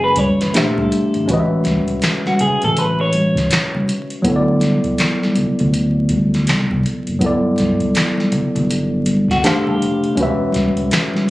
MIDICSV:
0, 0, Header, 1, 5, 480
1, 0, Start_track
1, 0, Key_signature, 3, "major"
1, 0, Tempo, 740741
1, 830, Time_signature, 4, 2, 24, 8
1, 7322, End_track
2, 0, Start_track
2, 0, Title_t, "Clean electric guitar"
2, 0, Program_c, 0, 27
2, 24, Note_on_c, 0, 71, 68
2, 118, Note_off_c, 0, 71, 0
2, 118, Note_on_c, 0, 73, 80
2, 271, Note_off_c, 0, 73, 0
2, 271, Note_on_c, 0, 71, 78
2, 362, Note_off_c, 0, 71, 0
2, 362, Note_on_c, 0, 70, 81
2, 512, Note_off_c, 0, 70, 0
2, 512, Note_on_c, 0, 69, 66
2, 820, Note_off_c, 0, 69, 0
2, 1472, Note_on_c, 0, 66, 68
2, 1552, Note_off_c, 0, 66, 0
2, 1560, Note_on_c, 0, 68, 71
2, 1697, Note_off_c, 0, 68, 0
2, 1714, Note_on_c, 0, 69, 83
2, 1802, Note_off_c, 0, 69, 0
2, 1802, Note_on_c, 0, 71, 82
2, 1938, Note_off_c, 0, 71, 0
2, 1950, Note_on_c, 0, 73, 73
2, 2639, Note_off_c, 0, 73, 0
2, 6033, Note_on_c, 0, 66, 70
2, 6113, Note_off_c, 0, 66, 0
2, 6121, Note_on_c, 0, 69, 89
2, 6275, Note_off_c, 0, 69, 0
2, 6275, Note_on_c, 0, 67, 69
2, 6582, Note_off_c, 0, 67, 0
2, 7322, End_track
3, 0, Start_track
3, 0, Title_t, "Tine electric piano"
3, 0, Program_c, 1, 4
3, 0, Control_c, 1, 64, 127
3, 0, Note_on_c, 1, 56, 77
3, 0, Note_on_c, 1, 61, 70
3, 0, Note_on_c, 1, 66, 66
3, 0, Note_on_c, 1, 71, 69
3, 0, Note_on_c, 1, 76, 81
3, 318, Note_off_c, 1, 56, 0
3, 325, Note_off_c, 1, 61, 0
3, 329, Note_off_c, 1, 66, 0
3, 336, Note_off_c, 1, 71, 0
3, 349, Note_on_c, 1, 57, 73
3, 356, Note_on_c, 1, 62, 65
3, 359, Control_c, 1, 64, 0
3, 362, Note_on_c, 1, 67, 67
3, 363, Note_off_c, 1, 76, 0
3, 367, Note_on_c, 1, 72, 62
3, 373, Note_on_c, 1, 76, 83
3, 460, Control_c, 1, 64, 127
3, 815, Note_on_c, 1, 56, 71
3, 827, Note_on_c, 1, 61, 68
3, 830, Note_off_c, 1, 57, 0
3, 833, Note_off_c, 1, 62, 0
3, 836, Note_off_c, 1, 67, 0
3, 838, Control_c, 1, 64, 0
3, 839, Note_off_c, 1, 72, 0
3, 841, Note_on_c, 1, 66, 73
3, 842, Note_off_c, 1, 76, 0
3, 851, Note_on_c, 1, 71, 69
3, 864, Note_on_c, 1, 75, 69
3, 900, Note_off_c, 1, 75, 0
3, 906, Note_on_c, 1, 76, 75
3, 948, Control_c, 1, 64, 127
3, 2717, Note_off_c, 1, 56, 0
3, 2723, Note_off_c, 1, 61, 0
3, 2730, Note_off_c, 1, 66, 0
3, 2735, Note_off_c, 1, 71, 0
3, 2736, Note_on_c, 1, 54, 76
3, 2748, Note_on_c, 1, 59, 76
3, 2759, Control_c, 1, 64, 0
3, 2759, Note_on_c, 1, 64, 70
3, 2762, Note_off_c, 1, 76, 0
3, 2772, Note_on_c, 1, 69, 67
3, 2785, Note_on_c, 1, 73, 63
3, 2820, Note_off_c, 1, 73, 0
3, 2825, Note_on_c, 1, 74, 85
3, 2870, Control_c, 1, 64, 127
3, 4637, Note_off_c, 1, 54, 0
3, 4643, Note_off_c, 1, 59, 0
3, 4649, Note_off_c, 1, 64, 0
3, 4655, Note_off_c, 1, 69, 0
3, 4659, Note_on_c, 1, 54, 72
3, 4670, Note_on_c, 1, 59, 71
3, 4678, Control_c, 1, 64, 0
3, 4681, Note_on_c, 1, 64, 69
3, 4682, Note_off_c, 1, 74, 0
3, 4695, Note_on_c, 1, 69, 72
3, 4706, Note_on_c, 1, 74, 85
3, 4792, Control_c, 1, 64, 127
3, 6079, Note_off_c, 1, 54, 0
3, 6084, Note_off_c, 1, 59, 0
3, 6090, Note_off_c, 1, 64, 0
3, 6096, Note_off_c, 1, 69, 0
3, 6102, Note_off_c, 1, 74, 0
3, 6115, Note_on_c, 1, 57, 74
3, 6118, Control_c, 1, 64, 0
3, 6120, Note_on_c, 1, 62, 71
3, 6125, Note_on_c, 1, 67, 70
3, 6132, Note_on_c, 1, 72, 72
3, 6137, Note_on_c, 1, 77, 89
3, 6248, Control_c, 1, 64, 127
3, 6579, Note_on_c, 1, 56, 77
3, 6590, Note_on_c, 1, 61, 76
3, 6593, Note_off_c, 1, 57, 0
3, 6595, Note_off_c, 1, 62, 0
3, 6597, Control_c, 1, 64, 0
3, 6598, Note_off_c, 1, 67, 0
3, 6601, Note_off_c, 1, 72, 0
3, 6603, Note_off_c, 1, 77, 0
3, 6603, Note_on_c, 1, 66, 67
3, 6615, Note_on_c, 1, 71, 66
3, 6627, Note_on_c, 1, 76, 90
3, 6704, Control_c, 1, 64, 127
3, 7322, Note_off_c, 1, 56, 0
3, 7322, Note_off_c, 1, 61, 0
3, 7322, Note_off_c, 1, 66, 0
3, 7322, Note_off_c, 1, 71, 0
3, 7322, Note_off_c, 1, 76, 0
3, 7322, End_track
4, 0, Start_track
4, 0, Title_t, "Analog synth bass"
4, 0, Program_c, 2, 38
4, 0, Note_on_c, 2, 30, 87
4, 329, Note_off_c, 2, 30, 0
4, 359, Note_on_c, 2, 34, 98
4, 557, Note_off_c, 2, 34, 0
4, 746, Note_on_c, 2, 32, 87
4, 820, Note_off_c, 2, 32, 0
4, 833, Note_on_c, 2, 33, 112
4, 1159, Note_off_c, 2, 33, 0
4, 1220, Note_on_c, 2, 33, 47
4, 1256, Note_off_c, 2, 33, 0
4, 1558, Note_on_c, 2, 33, 49
4, 1616, Note_off_c, 2, 33, 0
4, 1706, Note_on_c, 2, 33, 89
4, 2247, Note_off_c, 2, 33, 0
4, 2754, Note_on_c, 2, 38, 102
4, 3079, Note_off_c, 2, 38, 0
4, 3140, Note_on_c, 2, 38, 43
4, 3176, Note_off_c, 2, 38, 0
4, 3483, Note_on_c, 2, 38, 49
4, 3539, Note_off_c, 2, 38, 0
4, 3629, Note_on_c, 2, 38, 90
4, 4200, Note_on_c, 2, 36, 84
4, 4209, Note_off_c, 2, 38, 0
4, 4397, Note_off_c, 2, 36, 0
4, 4588, Note_on_c, 2, 30, 92
4, 4660, Note_off_c, 2, 30, 0
4, 4675, Note_on_c, 2, 31, 101
4, 5000, Note_off_c, 2, 31, 0
4, 5062, Note_on_c, 2, 31, 46
4, 5097, Note_off_c, 2, 31, 0
4, 5405, Note_on_c, 2, 31, 46
4, 5461, Note_off_c, 2, 31, 0
4, 5553, Note_on_c, 2, 31, 95
4, 6123, Note_on_c, 2, 29, 93
4, 6132, Note_off_c, 2, 31, 0
4, 6520, Note_off_c, 2, 29, 0
4, 6594, Note_on_c, 2, 28, 117
4, 6919, Note_off_c, 2, 28, 0
4, 6982, Note_on_c, 2, 30, 47
4, 7018, Note_off_c, 2, 30, 0
4, 7322, End_track
5, 0, Start_track
5, 0, Title_t, "Drums"
5, 102, Note_on_c, 9, 42, 57
5, 109, Note_on_c, 9, 36, 84
5, 114, Note_on_c, 9, 62, 29
5, 114, Note_on_c, 9, 63, 62
5, 167, Note_off_c, 9, 42, 0
5, 174, Note_off_c, 9, 36, 0
5, 179, Note_off_c, 9, 62, 0
5, 179, Note_off_c, 9, 63, 0
5, 264, Note_on_c, 9, 42, 35
5, 268, Note_on_c, 9, 38, 37
5, 329, Note_off_c, 9, 42, 0
5, 333, Note_off_c, 9, 38, 0
5, 347, Note_on_c, 9, 62, 31
5, 352, Note_on_c, 9, 42, 87
5, 364, Note_on_c, 9, 39, 92
5, 366, Note_on_c, 9, 38, 123
5, 412, Note_off_c, 9, 62, 0
5, 417, Note_off_c, 9, 42, 0
5, 429, Note_off_c, 9, 39, 0
5, 431, Note_off_c, 9, 38, 0
5, 503, Note_on_c, 9, 63, 60
5, 503, Note_on_c, 9, 64, 55
5, 504, Note_on_c, 9, 36, 89
5, 568, Note_off_c, 9, 63, 0
5, 568, Note_off_c, 9, 64, 0
5, 569, Note_off_c, 9, 36, 0
5, 596, Note_on_c, 9, 42, 65
5, 661, Note_off_c, 9, 42, 0
5, 739, Note_on_c, 9, 42, 33
5, 804, Note_off_c, 9, 42, 0
5, 828, Note_on_c, 9, 36, 105
5, 834, Note_on_c, 9, 42, 87
5, 840, Note_on_c, 9, 62, 31
5, 893, Note_off_c, 9, 36, 0
5, 899, Note_off_c, 9, 42, 0
5, 905, Note_off_c, 9, 62, 0
5, 1062, Note_on_c, 9, 62, 29
5, 1062, Note_on_c, 9, 63, 63
5, 1068, Note_on_c, 9, 42, 63
5, 1078, Note_on_c, 9, 36, 88
5, 1080, Note_on_c, 9, 38, 34
5, 1127, Note_off_c, 9, 62, 0
5, 1127, Note_off_c, 9, 63, 0
5, 1133, Note_off_c, 9, 42, 0
5, 1143, Note_off_c, 9, 36, 0
5, 1145, Note_off_c, 9, 38, 0
5, 1215, Note_on_c, 9, 36, 77
5, 1216, Note_on_c, 9, 42, 33
5, 1229, Note_on_c, 9, 63, 46
5, 1280, Note_off_c, 9, 36, 0
5, 1281, Note_off_c, 9, 42, 0
5, 1294, Note_off_c, 9, 63, 0
5, 1308, Note_on_c, 9, 42, 74
5, 1316, Note_on_c, 9, 39, 82
5, 1319, Note_on_c, 9, 38, 107
5, 1373, Note_off_c, 9, 42, 0
5, 1381, Note_off_c, 9, 39, 0
5, 1384, Note_off_c, 9, 38, 0
5, 1463, Note_on_c, 9, 63, 73
5, 1469, Note_on_c, 9, 38, 32
5, 1527, Note_off_c, 9, 63, 0
5, 1534, Note_off_c, 9, 38, 0
5, 1550, Note_on_c, 9, 42, 58
5, 1559, Note_on_c, 9, 64, 71
5, 1615, Note_off_c, 9, 42, 0
5, 1624, Note_off_c, 9, 64, 0
5, 1696, Note_on_c, 9, 42, 35
5, 1706, Note_on_c, 9, 64, 70
5, 1761, Note_off_c, 9, 42, 0
5, 1771, Note_off_c, 9, 64, 0
5, 1793, Note_on_c, 9, 42, 83
5, 1801, Note_on_c, 9, 62, 32
5, 1858, Note_off_c, 9, 42, 0
5, 1865, Note_off_c, 9, 62, 0
5, 2026, Note_on_c, 9, 42, 57
5, 2038, Note_on_c, 9, 62, 30
5, 2038, Note_on_c, 9, 63, 60
5, 2091, Note_off_c, 9, 42, 0
5, 2103, Note_off_c, 9, 62, 0
5, 2103, Note_off_c, 9, 63, 0
5, 2173, Note_on_c, 9, 36, 94
5, 2185, Note_on_c, 9, 42, 36
5, 2189, Note_on_c, 9, 38, 34
5, 2237, Note_off_c, 9, 36, 0
5, 2250, Note_off_c, 9, 42, 0
5, 2254, Note_off_c, 9, 38, 0
5, 2272, Note_on_c, 9, 42, 93
5, 2274, Note_on_c, 9, 62, 30
5, 2284, Note_on_c, 9, 39, 95
5, 2286, Note_on_c, 9, 38, 113
5, 2336, Note_off_c, 9, 42, 0
5, 2338, Note_off_c, 9, 62, 0
5, 2348, Note_off_c, 9, 39, 0
5, 2351, Note_off_c, 9, 38, 0
5, 2427, Note_on_c, 9, 63, 58
5, 2427, Note_on_c, 9, 64, 59
5, 2492, Note_off_c, 9, 63, 0
5, 2492, Note_off_c, 9, 64, 0
5, 2513, Note_on_c, 9, 62, 32
5, 2520, Note_on_c, 9, 42, 69
5, 2577, Note_off_c, 9, 62, 0
5, 2585, Note_off_c, 9, 42, 0
5, 2659, Note_on_c, 9, 42, 31
5, 2724, Note_off_c, 9, 42, 0
5, 2748, Note_on_c, 9, 36, 107
5, 2751, Note_on_c, 9, 42, 88
5, 2767, Note_on_c, 9, 62, 30
5, 2813, Note_off_c, 9, 36, 0
5, 2816, Note_off_c, 9, 42, 0
5, 2831, Note_off_c, 9, 62, 0
5, 2981, Note_on_c, 9, 62, 31
5, 2981, Note_on_c, 9, 63, 58
5, 2988, Note_on_c, 9, 42, 66
5, 3000, Note_on_c, 9, 38, 33
5, 3046, Note_off_c, 9, 62, 0
5, 3046, Note_off_c, 9, 63, 0
5, 3053, Note_off_c, 9, 42, 0
5, 3065, Note_off_c, 9, 38, 0
5, 3136, Note_on_c, 9, 36, 81
5, 3136, Note_on_c, 9, 42, 32
5, 3146, Note_on_c, 9, 63, 47
5, 3200, Note_off_c, 9, 36, 0
5, 3201, Note_off_c, 9, 42, 0
5, 3211, Note_off_c, 9, 63, 0
5, 3229, Note_on_c, 9, 42, 84
5, 3238, Note_on_c, 9, 39, 86
5, 3238, Note_on_c, 9, 62, 30
5, 3240, Note_on_c, 9, 38, 114
5, 3294, Note_off_c, 9, 42, 0
5, 3303, Note_off_c, 9, 39, 0
5, 3303, Note_off_c, 9, 62, 0
5, 3305, Note_off_c, 9, 38, 0
5, 3387, Note_on_c, 9, 63, 75
5, 3391, Note_on_c, 9, 38, 31
5, 3451, Note_off_c, 9, 63, 0
5, 3456, Note_off_c, 9, 38, 0
5, 3470, Note_on_c, 9, 42, 64
5, 3479, Note_on_c, 9, 64, 64
5, 3535, Note_off_c, 9, 42, 0
5, 3544, Note_off_c, 9, 64, 0
5, 3621, Note_on_c, 9, 42, 33
5, 3628, Note_on_c, 9, 64, 64
5, 3686, Note_off_c, 9, 42, 0
5, 3693, Note_off_c, 9, 64, 0
5, 3717, Note_on_c, 9, 42, 86
5, 3723, Note_on_c, 9, 62, 31
5, 3782, Note_off_c, 9, 42, 0
5, 3788, Note_off_c, 9, 62, 0
5, 3946, Note_on_c, 9, 42, 53
5, 3952, Note_on_c, 9, 36, 89
5, 3961, Note_on_c, 9, 62, 32
5, 3961, Note_on_c, 9, 63, 65
5, 4010, Note_off_c, 9, 42, 0
5, 4017, Note_off_c, 9, 36, 0
5, 4026, Note_off_c, 9, 62, 0
5, 4026, Note_off_c, 9, 63, 0
5, 4108, Note_on_c, 9, 42, 33
5, 4112, Note_on_c, 9, 38, 34
5, 4173, Note_off_c, 9, 42, 0
5, 4177, Note_off_c, 9, 38, 0
5, 4193, Note_on_c, 9, 42, 97
5, 4195, Note_on_c, 9, 62, 27
5, 4205, Note_on_c, 9, 39, 93
5, 4207, Note_on_c, 9, 38, 118
5, 4258, Note_off_c, 9, 42, 0
5, 4260, Note_off_c, 9, 62, 0
5, 4269, Note_off_c, 9, 39, 0
5, 4272, Note_off_c, 9, 38, 0
5, 4347, Note_on_c, 9, 63, 57
5, 4347, Note_on_c, 9, 64, 54
5, 4348, Note_on_c, 9, 36, 88
5, 4412, Note_off_c, 9, 36, 0
5, 4412, Note_off_c, 9, 63, 0
5, 4412, Note_off_c, 9, 64, 0
5, 4428, Note_on_c, 9, 62, 31
5, 4444, Note_on_c, 9, 42, 61
5, 4493, Note_off_c, 9, 62, 0
5, 4509, Note_off_c, 9, 42, 0
5, 4581, Note_on_c, 9, 42, 34
5, 4646, Note_off_c, 9, 42, 0
5, 4670, Note_on_c, 9, 36, 119
5, 4674, Note_on_c, 9, 42, 82
5, 4680, Note_on_c, 9, 62, 33
5, 4735, Note_off_c, 9, 36, 0
5, 4738, Note_off_c, 9, 42, 0
5, 4745, Note_off_c, 9, 62, 0
5, 4899, Note_on_c, 9, 62, 27
5, 4899, Note_on_c, 9, 63, 62
5, 4911, Note_on_c, 9, 42, 64
5, 4920, Note_on_c, 9, 36, 82
5, 4923, Note_on_c, 9, 38, 31
5, 4964, Note_off_c, 9, 62, 0
5, 4964, Note_off_c, 9, 63, 0
5, 4976, Note_off_c, 9, 42, 0
5, 4985, Note_off_c, 9, 36, 0
5, 4987, Note_off_c, 9, 38, 0
5, 5057, Note_on_c, 9, 36, 77
5, 5057, Note_on_c, 9, 42, 31
5, 5062, Note_on_c, 9, 63, 49
5, 5121, Note_off_c, 9, 36, 0
5, 5121, Note_off_c, 9, 42, 0
5, 5126, Note_off_c, 9, 63, 0
5, 5148, Note_on_c, 9, 62, 30
5, 5151, Note_on_c, 9, 42, 82
5, 5160, Note_on_c, 9, 39, 91
5, 5162, Note_on_c, 9, 38, 112
5, 5213, Note_off_c, 9, 62, 0
5, 5216, Note_off_c, 9, 42, 0
5, 5225, Note_off_c, 9, 39, 0
5, 5227, Note_off_c, 9, 38, 0
5, 5297, Note_on_c, 9, 63, 71
5, 5315, Note_on_c, 9, 38, 34
5, 5362, Note_off_c, 9, 63, 0
5, 5379, Note_off_c, 9, 38, 0
5, 5391, Note_on_c, 9, 42, 58
5, 5394, Note_on_c, 9, 62, 32
5, 5394, Note_on_c, 9, 64, 69
5, 5456, Note_off_c, 9, 42, 0
5, 5459, Note_off_c, 9, 62, 0
5, 5459, Note_off_c, 9, 64, 0
5, 5543, Note_on_c, 9, 64, 66
5, 5546, Note_on_c, 9, 42, 36
5, 5608, Note_off_c, 9, 64, 0
5, 5611, Note_off_c, 9, 42, 0
5, 5635, Note_on_c, 9, 62, 32
5, 5641, Note_on_c, 9, 42, 88
5, 5699, Note_off_c, 9, 62, 0
5, 5706, Note_off_c, 9, 42, 0
5, 5870, Note_on_c, 9, 42, 55
5, 5875, Note_on_c, 9, 62, 29
5, 5875, Note_on_c, 9, 63, 64
5, 5935, Note_off_c, 9, 42, 0
5, 5940, Note_off_c, 9, 62, 0
5, 5940, Note_off_c, 9, 63, 0
5, 6016, Note_on_c, 9, 36, 98
5, 6032, Note_on_c, 9, 42, 33
5, 6036, Note_on_c, 9, 38, 34
5, 6081, Note_off_c, 9, 36, 0
5, 6097, Note_off_c, 9, 42, 0
5, 6101, Note_off_c, 9, 38, 0
5, 6110, Note_on_c, 9, 62, 31
5, 6117, Note_on_c, 9, 42, 88
5, 6129, Note_on_c, 9, 39, 94
5, 6131, Note_on_c, 9, 38, 112
5, 6175, Note_off_c, 9, 62, 0
5, 6182, Note_off_c, 9, 42, 0
5, 6194, Note_off_c, 9, 39, 0
5, 6196, Note_off_c, 9, 38, 0
5, 6266, Note_on_c, 9, 63, 53
5, 6266, Note_on_c, 9, 64, 54
5, 6331, Note_off_c, 9, 63, 0
5, 6331, Note_off_c, 9, 64, 0
5, 6347, Note_on_c, 9, 62, 31
5, 6364, Note_on_c, 9, 42, 63
5, 6412, Note_off_c, 9, 62, 0
5, 6429, Note_off_c, 9, 42, 0
5, 6504, Note_on_c, 9, 42, 31
5, 6568, Note_off_c, 9, 42, 0
5, 6590, Note_on_c, 9, 36, 115
5, 6592, Note_on_c, 9, 42, 82
5, 6599, Note_on_c, 9, 62, 29
5, 6655, Note_off_c, 9, 36, 0
5, 6657, Note_off_c, 9, 42, 0
5, 6664, Note_off_c, 9, 62, 0
5, 6819, Note_on_c, 9, 62, 33
5, 6819, Note_on_c, 9, 63, 65
5, 6831, Note_on_c, 9, 42, 68
5, 6841, Note_on_c, 9, 36, 92
5, 6843, Note_on_c, 9, 38, 30
5, 6884, Note_off_c, 9, 62, 0
5, 6884, Note_off_c, 9, 63, 0
5, 6896, Note_off_c, 9, 42, 0
5, 6906, Note_off_c, 9, 36, 0
5, 6908, Note_off_c, 9, 38, 0
5, 6977, Note_on_c, 9, 36, 82
5, 6978, Note_on_c, 9, 42, 33
5, 6983, Note_on_c, 9, 63, 44
5, 7042, Note_off_c, 9, 36, 0
5, 7043, Note_off_c, 9, 42, 0
5, 7048, Note_off_c, 9, 63, 0
5, 7070, Note_on_c, 9, 62, 30
5, 7071, Note_on_c, 9, 42, 76
5, 7080, Note_on_c, 9, 39, 81
5, 7083, Note_on_c, 9, 38, 111
5, 7135, Note_off_c, 9, 62, 0
5, 7136, Note_off_c, 9, 42, 0
5, 7145, Note_off_c, 9, 39, 0
5, 7147, Note_off_c, 9, 38, 0
5, 7216, Note_on_c, 9, 63, 68
5, 7235, Note_on_c, 9, 38, 32
5, 7281, Note_off_c, 9, 63, 0
5, 7300, Note_off_c, 9, 38, 0
5, 7322, End_track
0, 0, End_of_file